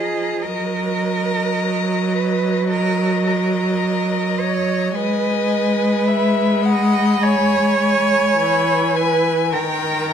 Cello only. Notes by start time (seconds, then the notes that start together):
Already playing: G#4
0.43 A#4
2.13 B4
2.69 A#4
3.26 A#4
4.39 C#5
4.95 B4
6.64 D#5
7.23 C#5
8.96 B4
9.53 A#4